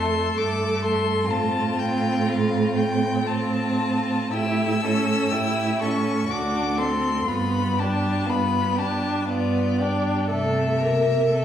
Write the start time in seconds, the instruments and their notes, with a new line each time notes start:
Already playing: cello F2, viola A3, violin A4 C6
0.37 cello G2, viola A3, violin D6
0.84 violin C6
1.28 cello A2, viola C4, violin F4 A5
1.79 violin G5
2.29 violin F5
2.76 violin G5
3.23 viola C4, violin F4 A5
4.33 cello A2, viola E4, violin G4 E6
4.82 viola C#4, violin A4
5.31 cello A2, viola E4, violin G4
5.81 viola C#4, violin A4 C#6
6.28 cello D2, viola D4, violin F#4 D6
6.77 viola C4, violin A4 C6
7.26 cello G2, viola B3, violin F4 B5
7.78 viola D4, violin G4 A5
8.26 cello G2, viola B3, violin F4 B5
8.76 viola D4, violin G4 A5
9.28 cello G2, viola B3, violin F4 D5
9.79 viola D4, violin G4
10.29 cello C3, viola A3, violin A4 E5
10.80 viola A#3, violin A#4
11.29 cello C3, viola A3, violin A4